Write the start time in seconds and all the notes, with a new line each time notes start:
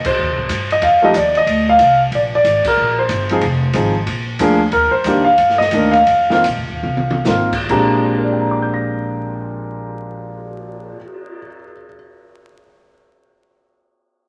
0.05 C5, muted upright bass stroke, kick, crash
0.19 D#2
0.29 C2
0.37 A#1, kick
0.49 G2, kick, hi-hat pedal, ride
0.70 D#5, ride
0.82 F2 F5, kick, ride
1.02 F3 A3 D#4 G4 D#5
1.14 D#2 D5, kick, hi-hat pedal, ride
1.35 D#5, ride
1.46 D2, kick, ride
1.69 F5
1.79 C2, kick, hi-hat pedal, ride
2.11 A#1 D5, kick, ride
2.35 D5
2.44 G#1, kick, hi-hat pedal, ride
2.64 A#4, muted upright bass stroke, kick, crash
2.77 A#1
2.99 C5
3.09 G1, kick, hi-hat pedal, ride
3.29 F3 C4 D#4 G#4, ride
3.41 F1, kick, ride
3.73 G#1 F3 C4 D#4 G#4, kick, hi-hat pedal, ride
4.06 A#1, kick, ride
4.39 D2 F3 A#3 D4 G#4, kick, hi-hat pedal, ride
4.72 D#2 A#4, kick, ride
4.91 C5, muted upright bass stroke
5.04 F2 D#3 A#3 D4, kick, hi-hat pedal, ride
5.08 G4
5.24 F5
5.38 G2, kick, ride
5.50 snare
5.58 D#5, snare
5.71 D2 D#3 A#3 D4, kick, hi-hat pedal, ride
5.75 A#4
5.91 F5, ride
6.07 F2, kick, ride
6.30 D#3 A#3 C4 F4, snare
6.44 A#1, kick, hi-hat pedal, ride
6.57 F1
6.70 D#1
6.83 C2, high tom
6.97 high tom
7.11 high tom
7.24 G#1 D#3 A#3 C4 F4, snare, hi-hat pedal
7.53 kick, crash
7.69 A#1 A#2 G#3 C4 D4 G4 A#5, kick, crash
7.99 cymbal swell
8.17 A#4
8.24 D5
8.32 G5
8.42 A#5
8.51 D6
8.62 G6
8.74 A#6